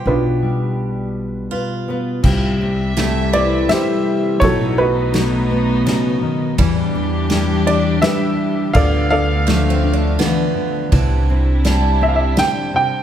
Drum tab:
CC |------|x-----|------|------|
RD |------|--x-x-|x-x-x-|x-x-x-|
SD |------|--o-o-|--o-o-|--o-o-|
BD |------|o-----|o-----|o-----|

CC |------|------|
RD |x-x-x-|x-x-x-|
SD |--o-o-|--o-o-|
BD |o-----|o-----|